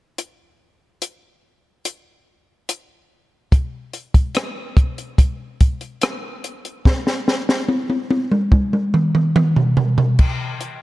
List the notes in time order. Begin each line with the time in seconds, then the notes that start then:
0.18 closed hi-hat
1.02 closed hi-hat
1.85 closed hi-hat
2.69 closed hi-hat
3.52 kick, closed hi-hat
3.93 closed hi-hat
4.14 kick, closed hi-hat
4.35 cross-stick, closed hi-hat
4.77 kick, closed hi-hat
4.98 closed hi-hat
5.18 kick, closed hi-hat
5.61 kick, closed hi-hat
5.81 closed hi-hat
6.02 cross-stick, closed hi-hat
6.44 closed hi-hat
6.65 closed hi-hat
6.85 kick, snare
7.07 snare
7.28 snare
7.49 snare
7.68 high tom
7.90 high tom
8.11 high tom
8.32 mid tom
8.52 kick, mid tom
8.73 mid tom
8.94 mid tom
9.15 mid tom
9.36 mid tom
9.56 floor tom
9.77 floor tom
9.98 floor tom
10.19 kick, crash
10.61 closed hi-hat